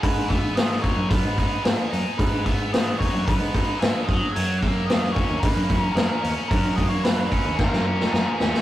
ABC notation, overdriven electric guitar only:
X:1
M:4/4
L:1/8
Q:1/4=111
K:F#mix
V:1 name="Overdriven electric guitar"
G,, B, F, D B, D G D | G,, B, F, D B, D G F, | F, A, F, C A, C G C | F, A, F, C A, C G C |]